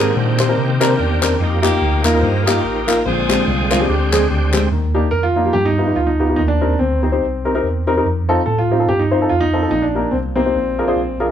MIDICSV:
0, 0, Header, 1, 7, 480
1, 0, Start_track
1, 0, Key_signature, -3, "major"
1, 0, Tempo, 415800
1, 1621, Time_signature, 4, 2, 24, 8
1, 13060, End_track
2, 0, Start_track
2, 0, Title_t, "Saxophone section"
2, 0, Program_c, 0, 65
2, 0, Note_on_c, 0, 60, 67
2, 0, Note_on_c, 0, 62, 78
2, 0, Note_on_c, 0, 68, 100
2, 151, Note_off_c, 0, 68, 0
2, 167, Note_on_c, 0, 72, 103
2, 187, Note_on_c, 0, 67, 75
2, 198, Note_on_c, 0, 63, 70
2, 629, Note_off_c, 0, 60, 0
2, 629, Note_off_c, 0, 62, 0
2, 1097, Note_off_c, 0, 67, 0
2, 1102, Note_off_c, 0, 63, 0
2, 1125, Note_on_c, 0, 70, 98
2, 1133, Note_off_c, 0, 72, 0
2, 1144, Note_on_c, 0, 62, 68
2, 1150, Note_on_c, 0, 67, 70
2, 1578, Note_off_c, 0, 70, 0
2, 1584, Note_off_c, 0, 67, 0
2, 1588, Note_off_c, 0, 62, 0
2, 1598, Note_on_c, 0, 67, 90
2, 1622, Note_on_c, 0, 58, 70
2, 1625, Note_on_c, 0, 63, 69
2, 1860, Note_off_c, 0, 67, 0
2, 1871, Note_on_c, 0, 67, 101
2, 1880, Note_off_c, 0, 58, 0
2, 1886, Note_off_c, 0, 63, 0
2, 1894, Note_on_c, 0, 58, 75
2, 1900, Note_on_c, 0, 63, 70
2, 2325, Note_off_c, 0, 67, 0
2, 2343, Note_on_c, 0, 70, 92
2, 2547, Note_on_c, 0, 72, 104
2, 2550, Note_off_c, 0, 63, 0
2, 2564, Note_off_c, 0, 70, 0
2, 2564, Note_on_c, 0, 63, 74
2, 2565, Note_on_c, 0, 67, 77
2, 2802, Note_off_c, 0, 58, 0
2, 2807, Note_off_c, 0, 67, 0
2, 2809, Note_on_c, 0, 70, 104
2, 2810, Note_off_c, 0, 63, 0
2, 2821, Note_on_c, 0, 67, 77
2, 2824, Note_on_c, 0, 63, 73
2, 2831, Note_off_c, 0, 72, 0
2, 3281, Note_off_c, 0, 70, 0
2, 3295, Note_on_c, 0, 70, 94
2, 3474, Note_off_c, 0, 67, 0
2, 3476, Note_off_c, 0, 63, 0
2, 3503, Note_off_c, 0, 70, 0
2, 3527, Note_on_c, 0, 72, 103
2, 3538, Note_on_c, 0, 68, 74
2, 3547, Note_on_c, 0, 65, 77
2, 4079, Note_off_c, 0, 72, 0
2, 4276, Note_on_c, 0, 70, 92
2, 4447, Note_off_c, 0, 68, 0
2, 4451, Note_off_c, 0, 65, 0
2, 4471, Note_on_c, 0, 67, 83
2, 4473, Note_off_c, 0, 70, 0
2, 4485, Note_on_c, 0, 62, 68
2, 4487, Note_on_c, 0, 60, 67
2, 4743, Note_on_c, 0, 68, 90
2, 4751, Note_off_c, 0, 67, 0
2, 4944, Note_off_c, 0, 60, 0
2, 4953, Note_off_c, 0, 62, 0
2, 4955, Note_on_c, 0, 67, 82
2, 4958, Note_on_c, 0, 60, 56
2, 4961, Note_off_c, 0, 68, 0
2, 4967, Note_on_c, 0, 62, 58
2, 5337, Note_off_c, 0, 67, 0
2, 5409, Note_off_c, 0, 60, 0
2, 5414, Note_off_c, 0, 62, 0
2, 13060, End_track
3, 0, Start_track
3, 0, Title_t, "Grand piano"
3, 0, Program_c, 1, 0
3, 5899, Note_on_c, 1, 70, 100
3, 6039, Note_on_c, 1, 65, 99
3, 6054, Note_off_c, 1, 70, 0
3, 6371, Note_off_c, 1, 65, 0
3, 6385, Note_on_c, 1, 67, 97
3, 6527, Note_on_c, 1, 63, 98
3, 6537, Note_off_c, 1, 67, 0
3, 6879, Note_on_c, 1, 65, 89
3, 6891, Note_off_c, 1, 63, 0
3, 7003, Note_on_c, 1, 63, 79
3, 7010, Note_off_c, 1, 65, 0
3, 7328, Note_off_c, 1, 63, 0
3, 7345, Note_on_c, 1, 63, 91
3, 7403, Note_off_c, 1, 63, 0
3, 7481, Note_on_c, 1, 62, 94
3, 7814, Note_off_c, 1, 62, 0
3, 7838, Note_on_c, 1, 60, 80
3, 8092, Note_off_c, 1, 60, 0
3, 8109, Note_on_c, 1, 60, 68
3, 9032, Note_off_c, 1, 60, 0
3, 9765, Note_on_c, 1, 69, 86
3, 9896, Note_off_c, 1, 69, 0
3, 9911, Note_on_c, 1, 65, 86
3, 10232, Note_off_c, 1, 65, 0
3, 10257, Note_on_c, 1, 67, 94
3, 10383, Note_on_c, 1, 63, 80
3, 10397, Note_off_c, 1, 67, 0
3, 10709, Note_off_c, 1, 63, 0
3, 10730, Note_on_c, 1, 65, 93
3, 10858, Note_on_c, 1, 63, 102
3, 10874, Note_off_c, 1, 65, 0
3, 11187, Note_off_c, 1, 63, 0
3, 11208, Note_on_c, 1, 63, 96
3, 11338, Note_on_c, 1, 62, 85
3, 11354, Note_off_c, 1, 63, 0
3, 11672, Note_on_c, 1, 60, 72
3, 11703, Note_off_c, 1, 62, 0
3, 11737, Note_off_c, 1, 60, 0
3, 11954, Note_on_c, 1, 60, 88
3, 12880, Note_off_c, 1, 60, 0
3, 13060, End_track
4, 0, Start_track
4, 0, Title_t, "Upright piano"
4, 0, Program_c, 2, 0
4, 0, Note_on_c, 2, 44, 69
4, 412, Note_off_c, 2, 44, 0
4, 459, Note_on_c, 2, 62, 61
4, 460, Note_on_c, 2, 60, 72
4, 460, Note_on_c, 2, 67, 63
4, 461, Note_on_c, 2, 72, 84
4, 521, Note_off_c, 2, 62, 0
4, 522, Note_off_c, 2, 60, 0
4, 522, Note_off_c, 2, 67, 0
4, 522, Note_off_c, 2, 72, 0
4, 563, Note_on_c, 2, 60, 67
4, 566, Note_on_c, 2, 62, 62
4, 566, Note_on_c, 2, 70, 76
4, 567, Note_on_c, 2, 67, 60
4, 695, Note_off_c, 2, 60, 0
4, 697, Note_off_c, 2, 62, 0
4, 697, Note_off_c, 2, 67, 0
4, 697, Note_off_c, 2, 70, 0
4, 930, Note_on_c, 2, 70, 103
4, 931, Note_on_c, 2, 60, 90
4, 932, Note_on_c, 2, 62, 81
4, 935, Note_on_c, 2, 67, 83
4, 1059, Note_off_c, 2, 60, 0
4, 1059, Note_off_c, 2, 70, 0
4, 1060, Note_off_c, 2, 62, 0
4, 1062, Note_off_c, 2, 67, 0
4, 1402, Note_on_c, 2, 60, 69
4, 1405, Note_on_c, 2, 62, 67
4, 1407, Note_on_c, 2, 67, 66
4, 1412, Note_on_c, 2, 70, 76
4, 1534, Note_off_c, 2, 60, 0
4, 1535, Note_off_c, 2, 62, 0
4, 1537, Note_off_c, 2, 67, 0
4, 1539, Note_off_c, 2, 70, 0
4, 1871, Note_on_c, 2, 58, 77
4, 1872, Note_on_c, 2, 65, 68
4, 1873, Note_on_c, 2, 63, 67
4, 1874, Note_on_c, 2, 67, 87
4, 2008, Note_off_c, 2, 58, 0
4, 2008, Note_off_c, 2, 63, 0
4, 2008, Note_off_c, 2, 65, 0
4, 2009, Note_off_c, 2, 67, 0
4, 2364, Note_on_c, 2, 63, 67
4, 2364, Note_on_c, 2, 70, 87
4, 2365, Note_on_c, 2, 58, 70
4, 2366, Note_on_c, 2, 65, 70
4, 2430, Note_off_c, 2, 58, 0
4, 2430, Note_off_c, 2, 63, 0
4, 2430, Note_off_c, 2, 65, 0
4, 2430, Note_off_c, 2, 70, 0
4, 2468, Note_on_c, 2, 63, 65
4, 2469, Note_on_c, 2, 65, 61
4, 2471, Note_on_c, 2, 70, 70
4, 2472, Note_on_c, 2, 58, 63
4, 2603, Note_off_c, 2, 63, 0
4, 2604, Note_off_c, 2, 65, 0
4, 2605, Note_off_c, 2, 70, 0
4, 2606, Note_off_c, 2, 58, 0
4, 2850, Note_on_c, 2, 63, 72
4, 2852, Note_on_c, 2, 58, 72
4, 2852, Note_on_c, 2, 67, 86
4, 2853, Note_on_c, 2, 65, 74
4, 2975, Note_off_c, 2, 63, 0
4, 2976, Note_off_c, 2, 58, 0
4, 2976, Note_off_c, 2, 65, 0
4, 2976, Note_off_c, 2, 67, 0
4, 3317, Note_on_c, 2, 65, 71
4, 3318, Note_on_c, 2, 63, 63
4, 3319, Note_on_c, 2, 58, 73
4, 3321, Note_on_c, 2, 70, 82
4, 3447, Note_off_c, 2, 65, 0
4, 3448, Note_off_c, 2, 58, 0
4, 3448, Note_off_c, 2, 63, 0
4, 3449, Note_off_c, 2, 70, 0
4, 3526, Note_on_c, 2, 46, 67
4, 3800, Note_on_c, 2, 56, 73
4, 3801, Note_on_c, 2, 60, 68
4, 3802, Note_on_c, 2, 67, 81
4, 3805, Note_on_c, 2, 62, 65
4, 3928, Note_off_c, 2, 56, 0
4, 3929, Note_off_c, 2, 60, 0
4, 3929, Note_off_c, 2, 67, 0
4, 3931, Note_off_c, 2, 62, 0
4, 4232, Note_off_c, 2, 46, 0
4, 4283, Note_on_c, 2, 60, 72
4, 4284, Note_on_c, 2, 56, 73
4, 4284, Note_on_c, 2, 62, 68
4, 4289, Note_on_c, 2, 65, 79
4, 4346, Note_off_c, 2, 56, 0
4, 4346, Note_off_c, 2, 60, 0
4, 4346, Note_off_c, 2, 62, 0
4, 4349, Note_off_c, 2, 65, 0
4, 4390, Note_on_c, 2, 60, 62
4, 4392, Note_on_c, 2, 56, 67
4, 4392, Note_on_c, 2, 67, 70
4, 4394, Note_on_c, 2, 62, 62
4, 4521, Note_off_c, 2, 60, 0
4, 4522, Note_off_c, 2, 56, 0
4, 4523, Note_off_c, 2, 62, 0
4, 4523, Note_off_c, 2, 67, 0
4, 4765, Note_on_c, 2, 62, 65
4, 4766, Note_on_c, 2, 56, 75
4, 4766, Note_on_c, 2, 60, 68
4, 4767, Note_on_c, 2, 68, 86
4, 4890, Note_off_c, 2, 56, 0
4, 4890, Note_off_c, 2, 60, 0
4, 4890, Note_off_c, 2, 62, 0
4, 4891, Note_off_c, 2, 68, 0
4, 5234, Note_on_c, 2, 67, 77
4, 5235, Note_on_c, 2, 60, 67
4, 5236, Note_on_c, 2, 56, 75
4, 5236, Note_on_c, 2, 62, 69
4, 5364, Note_off_c, 2, 60, 0
4, 5364, Note_off_c, 2, 67, 0
4, 5365, Note_off_c, 2, 56, 0
4, 5365, Note_off_c, 2, 62, 0
4, 5450, Note_on_c, 2, 51, 58
4, 5709, Note_on_c, 2, 67, 86
4, 5710, Note_on_c, 2, 63, 68
4, 5712, Note_on_c, 2, 62, 75
4, 5713, Note_on_c, 2, 58, 72
4, 5841, Note_off_c, 2, 67, 0
4, 5842, Note_off_c, 2, 63, 0
4, 5843, Note_off_c, 2, 58, 0
4, 5843, Note_off_c, 2, 62, 0
4, 6154, Note_off_c, 2, 51, 0
4, 6188, Note_on_c, 2, 58, 68
4, 6189, Note_on_c, 2, 62, 62
4, 6190, Note_on_c, 2, 63, 64
4, 6190, Note_on_c, 2, 65, 75
4, 6258, Note_off_c, 2, 58, 0
4, 6258, Note_off_c, 2, 62, 0
4, 6258, Note_off_c, 2, 63, 0
4, 6259, Note_off_c, 2, 65, 0
4, 6291, Note_on_c, 2, 63, 57
4, 6292, Note_on_c, 2, 58, 62
4, 6293, Note_on_c, 2, 62, 53
4, 6299, Note_on_c, 2, 67, 68
4, 6403, Note_off_c, 2, 58, 0
4, 6403, Note_off_c, 2, 62, 0
4, 6403, Note_off_c, 2, 63, 0
4, 6406, Note_off_c, 2, 67, 0
4, 6407, Note_on_c, 2, 43, 53
4, 6674, Note_on_c, 2, 63, 59
4, 6676, Note_on_c, 2, 59, 65
4, 6678, Note_on_c, 2, 67, 78
4, 6679, Note_on_c, 2, 65, 61
4, 6741, Note_off_c, 2, 59, 0
4, 6741, Note_off_c, 2, 63, 0
4, 6743, Note_off_c, 2, 65, 0
4, 6743, Note_off_c, 2, 67, 0
4, 6776, Note_on_c, 2, 59, 59
4, 6779, Note_on_c, 2, 65, 57
4, 6780, Note_on_c, 2, 63, 53
4, 6781, Note_on_c, 2, 67, 67
4, 6914, Note_off_c, 2, 59, 0
4, 6916, Note_off_c, 2, 63, 0
4, 6916, Note_off_c, 2, 65, 0
4, 6917, Note_off_c, 2, 67, 0
4, 7113, Note_off_c, 2, 43, 0
4, 7153, Note_on_c, 2, 63, 59
4, 7154, Note_on_c, 2, 65, 61
4, 7156, Note_on_c, 2, 59, 67
4, 7156, Note_on_c, 2, 67, 78
4, 7220, Note_off_c, 2, 63, 0
4, 7221, Note_off_c, 2, 65, 0
4, 7222, Note_off_c, 2, 59, 0
4, 7222, Note_off_c, 2, 67, 0
4, 7259, Note_on_c, 2, 63, 58
4, 7260, Note_on_c, 2, 65, 51
4, 7263, Note_on_c, 2, 59, 57
4, 7265, Note_on_c, 2, 67, 63
4, 7367, Note_off_c, 2, 63, 0
4, 7367, Note_off_c, 2, 65, 0
4, 7367, Note_on_c, 2, 51, 58
4, 7369, Note_off_c, 2, 59, 0
4, 7370, Note_off_c, 2, 67, 0
4, 7633, Note_on_c, 2, 63, 65
4, 7634, Note_on_c, 2, 60, 67
4, 7634, Note_on_c, 2, 70, 74
4, 7637, Note_on_c, 2, 67, 63
4, 7764, Note_off_c, 2, 63, 0
4, 7765, Note_off_c, 2, 60, 0
4, 7765, Note_off_c, 2, 70, 0
4, 7766, Note_off_c, 2, 67, 0
4, 8075, Note_off_c, 2, 51, 0
4, 8113, Note_on_c, 2, 67, 59
4, 8114, Note_on_c, 2, 63, 61
4, 8115, Note_on_c, 2, 60, 67
4, 8117, Note_on_c, 2, 72, 73
4, 8181, Note_off_c, 2, 67, 0
4, 8182, Note_off_c, 2, 60, 0
4, 8182, Note_off_c, 2, 63, 0
4, 8184, Note_off_c, 2, 72, 0
4, 8222, Note_on_c, 2, 63, 55
4, 8222, Note_on_c, 2, 72, 70
4, 8227, Note_on_c, 2, 60, 66
4, 8228, Note_on_c, 2, 67, 59
4, 8359, Note_off_c, 2, 63, 0
4, 8359, Note_off_c, 2, 72, 0
4, 8361, Note_off_c, 2, 60, 0
4, 8361, Note_off_c, 2, 67, 0
4, 8601, Note_on_c, 2, 70, 77
4, 8602, Note_on_c, 2, 63, 60
4, 8605, Note_on_c, 2, 67, 67
4, 8608, Note_on_c, 2, 60, 68
4, 8666, Note_off_c, 2, 63, 0
4, 8666, Note_off_c, 2, 70, 0
4, 8668, Note_off_c, 2, 67, 0
4, 8670, Note_off_c, 2, 60, 0
4, 8712, Note_on_c, 2, 60, 76
4, 8714, Note_on_c, 2, 70, 86
4, 8717, Note_on_c, 2, 67, 66
4, 8718, Note_on_c, 2, 63, 68
4, 8844, Note_off_c, 2, 60, 0
4, 8845, Note_off_c, 2, 70, 0
4, 8847, Note_off_c, 2, 63, 0
4, 8847, Note_off_c, 2, 67, 0
4, 9087, Note_on_c, 2, 63, 73
4, 9089, Note_on_c, 2, 60, 80
4, 9090, Note_on_c, 2, 67, 68
4, 9091, Note_on_c, 2, 70, 86
4, 9149, Note_off_c, 2, 63, 0
4, 9151, Note_off_c, 2, 60, 0
4, 9151, Note_off_c, 2, 67, 0
4, 9151, Note_off_c, 2, 70, 0
4, 9202, Note_on_c, 2, 70, 77
4, 9204, Note_on_c, 2, 60, 70
4, 9204, Note_on_c, 2, 67, 68
4, 9206, Note_on_c, 2, 63, 69
4, 9301, Note_off_c, 2, 60, 0
4, 9301, Note_off_c, 2, 70, 0
4, 9302, Note_off_c, 2, 67, 0
4, 9303, Note_off_c, 2, 63, 0
4, 9566, Note_on_c, 2, 60, 79
4, 9568, Note_on_c, 2, 65, 74
4, 9571, Note_on_c, 2, 63, 73
4, 9571, Note_on_c, 2, 69, 93
4, 9694, Note_off_c, 2, 60, 0
4, 9694, Note_off_c, 2, 65, 0
4, 9696, Note_off_c, 2, 63, 0
4, 9696, Note_off_c, 2, 69, 0
4, 10060, Note_on_c, 2, 67, 73
4, 10061, Note_on_c, 2, 63, 58
4, 10062, Note_on_c, 2, 60, 63
4, 10063, Note_on_c, 2, 65, 61
4, 10117, Note_off_c, 2, 67, 0
4, 10118, Note_off_c, 2, 63, 0
4, 10119, Note_off_c, 2, 60, 0
4, 10119, Note_off_c, 2, 65, 0
4, 10153, Note_on_c, 2, 65, 59
4, 10154, Note_on_c, 2, 60, 62
4, 10154, Note_on_c, 2, 69, 64
4, 10157, Note_on_c, 2, 63, 57
4, 10287, Note_off_c, 2, 60, 0
4, 10287, Note_off_c, 2, 65, 0
4, 10287, Note_off_c, 2, 69, 0
4, 10288, Note_off_c, 2, 63, 0
4, 10521, Note_on_c, 2, 72, 76
4, 10524, Note_on_c, 2, 60, 65
4, 10524, Note_on_c, 2, 65, 61
4, 10528, Note_on_c, 2, 63, 66
4, 10589, Note_off_c, 2, 72, 0
4, 10590, Note_off_c, 2, 60, 0
4, 10590, Note_off_c, 2, 65, 0
4, 10592, Note_off_c, 2, 63, 0
4, 10636, Note_on_c, 2, 60, 67
4, 10638, Note_on_c, 2, 65, 61
4, 10640, Note_on_c, 2, 63, 56
4, 10640, Note_on_c, 2, 69, 71
4, 10769, Note_off_c, 2, 60, 0
4, 10770, Note_off_c, 2, 65, 0
4, 10771, Note_off_c, 2, 63, 0
4, 10771, Note_off_c, 2, 69, 0
4, 11004, Note_on_c, 2, 65, 57
4, 11005, Note_on_c, 2, 63, 58
4, 11007, Note_on_c, 2, 60, 67
4, 11008, Note_on_c, 2, 69, 68
4, 11071, Note_off_c, 2, 65, 0
4, 11072, Note_off_c, 2, 60, 0
4, 11072, Note_off_c, 2, 63, 0
4, 11073, Note_off_c, 2, 69, 0
4, 11113, Note_on_c, 2, 63, 50
4, 11114, Note_on_c, 2, 60, 60
4, 11115, Note_on_c, 2, 69, 68
4, 11119, Note_on_c, 2, 65, 51
4, 11219, Note_off_c, 2, 60, 0
4, 11219, Note_off_c, 2, 63, 0
4, 11220, Note_off_c, 2, 69, 0
4, 11222, Note_off_c, 2, 65, 0
4, 11222, Note_on_c, 2, 46, 58
4, 11488, Note_on_c, 2, 67, 63
4, 11493, Note_on_c, 2, 58, 67
4, 11493, Note_on_c, 2, 63, 62
4, 11495, Note_on_c, 2, 70, 71
4, 11617, Note_off_c, 2, 67, 0
4, 11619, Note_off_c, 2, 63, 0
4, 11620, Note_off_c, 2, 58, 0
4, 11621, Note_off_c, 2, 70, 0
4, 11928, Note_off_c, 2, 46, 0
4, 11958, Note_on_c, 2, 58, 65
4, 11959, Note_on_c, 2, 63, 61
4, 11959, Note_on_c, 2, 67, 58
4, 11959, Note_on_c, 2, 72, 73
4, 12029, Note_off_c, 2, 58, 0
4, 12030, Note_off_c, 2, 63, 0
4, 12030, Note_off_c, 2, 67, 0
4, 12030, Note_off_c, 2, 72, 0
4, 12077, Note_on_c, 2, 63, 54
4, 12077, Note_on_c, 2, 72, 65
4, 12079, Note_on_c, 2, 67, 53
4, 12080, Note_on_c, 2, 58, 59
4, 12173, Note_on_c, 2, 46, 54
4, 12182, Note_off_c, 2, 72, 0
4, 12183, Note_off_c, 2, 63, 0
4, 12183, Note_off_c, 2, 67, 0
4, 12184, Note_off_c, 2, 58, 0
4, 12451, Note_on_c, 2, 68, 62
4, 12453, Note_on_c, 2, 65, 62
4, 12454, Note_on_c, 2, 70, 76
4, 12456, Note_on_c, 2, 62, 68
4, 12517, Note_off_c, 2, 65, 0
4, 12517, Note_off_c, 2, 68, 0
4, 12518, Note_off_c, 2, 70, 0
4, 12519, Note_off_c, 2, 62, 0
4, 12554, Note_on_c, 2, 62, 71
4, 12555, Note_on_c, 2, 65, 64
4, 12558, Note_on_c, 2, 68, 67
4, 12558, Note_on_c, 2, 72, 78
4, 12691, Note_off_c, 2, 62, 0
4, 12691, Note_off_c, 2, 65, 0
4, 12693, Note_off_c, 2, 68, 0
4, 12693, Note_off_c, 2, 72, 0
4, 12885, Note_off_c, 2, 46, 0
4, 12931, Note_on_c, 2, 68, 70
4, 12931, Note_on_c, 2, 70, 82
4, 12933, Note_on_c, 2, 62, 71
4, 12933, Note_on_c, 2, 65, 70
4, 12997, Note_off_c, 2, 68, 0
4, 12997, Note_off_c, 2, 70, 0
4, 12998, Note_off_c, 2, 62, 0
4, 12998, Note_off_c, 2, 65, 0
4, 13060, End_track
5, 0, Start_track
5, 0, Title_t, "Tonewheel organ"
5, 0, Program_c, 3, 16
5, 0, Note_on_c, 3, 51, 65
5, 0, Note_on_c, 3, 58, 62
5, 0, Note_on_c, 3, 60, 59
5, 0, Note_on_c, 3, 79, 70
5, 1576, Note_off_c, 3, 60, 0
5, 1578, Note_off_c, 3, 58, 0
5, 1578, Note_off_c, 3, 79, 0
5, 1579, Note_off_c, 3, 51, 0
5, 1616, Note_on_c, 3, 56, 47
5, 1617, Note_on_c, 3, 53, 67
5, 1617, Note_on_c, 3, 67, 69
5, 1622, Note_on_c, 3, 63, 58
5, 1678, Note_on_c, 3, 58, 55
5, 1683, Note_off_c, 3, 56, 0
5, 3493, Note_off_c, 3, 53, 0
5, 3493, Note_off_c, 3, 67, 0
5, 3495, Note_off_c, 3, 63, 0
5, 3524, Note_off_c, 3, 58, 0
5, 3531, Note_on_c, 3, 79, 72
5, 3541, Note_on_c, 3, 50, 59
5, 3541, Note_on_c, 3, 60, 54
5, 3543, Note_on_c, 3, 56, 58
5, 5410, Note_off_c, 3, 79, 0
5, 5415, Note_off_c, 3, 50, 0
5, 5415, Note_off_c, 3, 60, 0
5, 5416, Note_off_c, 3, 56, 0
5, 13060, End_track
6, 0, Start_track
6, 0, Title_t, "Tine electric piano"
6, 0, Program_c, 4, 4
6, 187, Note_on_c, 4, 46, 93
6, 593, Note_off_c, 4, 46, 0
6, 666, Note_on_c, 4, 48, 105
6, 1072, Note_off_c, 4, 48, 0
6, 1145, Note_on_c, 4, 40, 91
6, 1550, Note_off_c, 4, 40, 0
6, 1616, Note_on_c, 4, 41, 100
6, 2024, Note_off_c, 4, 41, 0
6, 2095, Note_on_c, 4, 38, 97
6, 2326, Note_off_c, 4, 38, 0
6, 2359, Note_on_c, 4, 39, 91
6, 2540, Note_off_c, 4, 39, 0
6, 2568, Note_on_c, 4, 43, 94
6, 2978, Note_off_c, 4, 43, 0
6, 3045, Note_on_c, 4, 33, 82
6, 3456, Note_off_c, 4, 33, 0
6, 3530, Note_on_c, 4, 34, 105
6, 3938, Note_off_c, 4, 34, 0
6, 4009, Note_on_c, 4, 36, 103
6, 4417, Note_off_c, 4, 36, 0
6, 4492, Note_on_c, 4, 38, 88
6, 4899, Note_off_c, 4, 38, 0
6, 4968, Note_on_c, 4, 38, 89
6, 5376, Note_off_c, 4, 38, 0
6, 5443, Note_on_c, 4, 39, 98
6, 5854, Note_off_c, 4, 39, 0
6, 5918, Note_on_c, 4, 41, 76
6, 6331, Note_off_c, 4, 41, 0
6, 6400, Note_on_c, 4, 43, 94
6, 6812, Note_off_c, 4, 43, 0
6, 6886, Note_on_c, 4, 38, 75
6, 7296, Note_off_c, 4, 38, 0
6, 7373, Note_on_c, 4, 39, 97
6, 7781, Note_off_c, 4, 39, 0
6, 7850, Note_on_c, 4, 38, 87
6, 8259, Note_off_c, 4, 38, 0
6, 8329, Note_on_c, 4, 36, 75
6, 8739, Note_off_c, 4, 36, 0
6, 8810, Note_on_c, 4, 40, 73
6, 9220, Note_off_c, 4, 40, 0
6, 9295, Note_on_c, 4, 41, 100
6, 9704, Note_off_c, 4, 41, 0
6, 9775, Note_on_c, 4, 45, 87
6, 10251, Note_on_c, 4, 43, 85
6, 10257, Note_off_c, 4, 45, 0
6, 10663, Note_off_c, 4, 43, 0
6, 10737, Note_on_c, 4, 41, 76
6, 11147, Note_off_c, 4, 41, 0
6, 11211, Note_on_c, 4, 34, 92
6, 11624, Note_off_c, 4, 34, 0
6, 11696, Note_on_c, 4, 36, 87
6, 12107, Note_off_c, 4, 36, 0
6, 12175, Note_on_c, 4, 34, 83
6, 12588, Note_off_c, 4, 34, 0
6, 12652, Note_on_c, 4, 35, 78
6, 13060, Note_off_c, 4, 35, 0
6, 13060, End_track
7, 0, Start_track
7, 0, Title_t, "Drums"
7, 455, Note_on_c, 9, 39, 90
7, 570, Note_off_c, 9, 39, 0
7, 947, Note_on_c, 9, 39, 101
7, 1063, Note_off_c, 9, 39, 0
7, 1420, Note_on_c, 9, 39, 98
7, 1535, Note_off_c, 9, 39, 0
7, 1892, Note_on_c, 9, 39, 90
7, 2008, Note_off_c, 9, 39, 0
7, 2369, Note_on_c, 9, 39, 89
7, 2484, Note_off_c, 9, 39, 0
7, 2866, Note_on_c, 9, 39, 109
7, 2981, Note_off_c, 9, 39, 0
7, 3336, Note_on_c, 9, 39, 91
7, 3452, Note_off_c, 9, 39, 0
7, 3813, Note_on_c, 9, 39, 93
7, 3929, Note_off_c, 9, 39, 0
7, 4292, Note_on_c, 9, 39, 92
7, 4407, Note_off_c, 9, 39, 0
7, 4771, Note_on_c, 9, 39, 103
7, 4886, Note_off_c, 9, 39, 0
7, 5238, Note_on_c, 9, 39, 88
7, 5353, Note_off_c, 9, 39, 0
7, 13060, End_track
0, 0, End_of_file